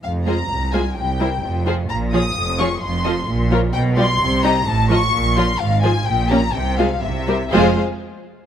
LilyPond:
<<
  \new Staff \with { instrumentName = "Violin section" } { \time 2/4 \key f \minor \tempo 4 = 128 f''8 bes''4 aes''8 | g''4. r8 | bes''8 ees'''4 des'''8 | c'''4. r8 |
g''8 c'''4 bes''8 | a''8 des'''4 c'''8 | f''8 aes''8 g''8 bes''8 | g''8 f''8 e''4 |
f''8 r4. | }
  \new Staff \with { instrumentName = "Violin section" } { \time 2/4 \key f \minor r8 <aes' c''>8 r8 <aes' c''>8 | r8 <bes' c''>8 r8 <aes' c''>8 | r8 <aes' des''>8 r8 <aes' des''>8 | r8 <a' ees''>8 r8 <bes' des''>8 |
r8 <g' d''>8 r8 <g' ees''>8 | r8 <a' ees''>8 r8 <f' des''>8 | r8 <aes' c''>8 r8 <g' des''>8 | r8 <aes' c''>8 r8 <bes' c''>8 |
<aes' c''>8 r4. | }
  \new Staff \with { instrumentName = "Viola section" } { \time 2/4 \key f \minor r8 <aes f'>8 r8 <aes f'>8 | r8 <g e'>8 r8 <f f'>8 | r8 <f f'>8 r8 <f f'>8 | r8 <f f'>8 r8 <f f'>8 |
r8 <g f'>8 r8 <g ees'>8 | r8 <f f'>8 r8 <f f'>8 | r8 <f f'>8 r8 <bes des'>8 | r8 <aes f'>8 r8 <g g'>8 |
<aes f'>8 r4. | }
  \new Staff \with { instrumentName = "Cello section" } { \clef bass \time 2/4 \key f \minor f,4 c,4 | c,4 f,4 | bes,4 f,4 | f,4 bes,4 |
b,4 c4 | a,4 bes,4 | aes,4 bes,4 | c4 c4 |
f,8 r4. | }
  \new Staff \with { instrumentName = "Double bass section" } { \clef bass \time 2/4 \key f \minor f,,4 c,4 | c,4 f,,4 | bes,,4 f,,4 | f,,4 bes,,4 |
b,,4 c,4 | a,,4 bes,,4 | aes,,4 bes,,4 | c,4 c,4 |
f,,8 r4. | }
>>